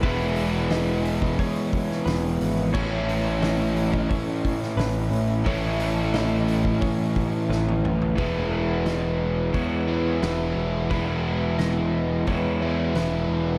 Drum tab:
CC |----------------|x---------------|----------------|----------------|
HH |o-o-o-o-o-o-o-o-|--o-o-o-o-o-o-o-|o-o-o-o-o-o-----|o---o---o---o---|
SD |----o------oo---|----o------oo---|----o-------o---|----o-------o---|
T1 |----------------|----------------|-------------o--|----------------|
T2 |----------------|----------------|--------------o-|----------------|
FT |----------------|----------------|---------------o|----------------|
BD |o------oo-o-----|o------oo-o-----|o------oo-o-----|o-------o-------|

CC |----------------|
HH |o---o---o---o---|
SD |----o-------o---|
T1 |----------------|
T2 |----------------|
FT |----------------|
BD |o-------o-------|